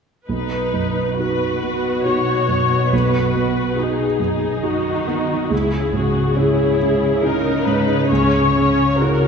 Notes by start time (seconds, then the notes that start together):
0.28 B1 B2 D#4 B4
0.74 F#2
1.19 D#4 F#4 B4
1.62 B3
2.05 D#4 F#4 C#5
2.48 F#2
2.92 B1 F#4 B4
3.35 B3
3.78 D#4 F#4 G#4
4.19 F#2 D#4
4.63 D#3 D#4 F#4
5.07 B3
5.50 C#2 C#3 E4 G#4
5.93 G#2 F#4
6.37 C#4 E4 G#4
6.80 G#3
7.23 C#4 D#4 E4 A#4
7.66 G#2 B4
8.11 C#2 C#4 C#5
8.56 G#3 C#4
9.00 C#4 E4 F#4 A#4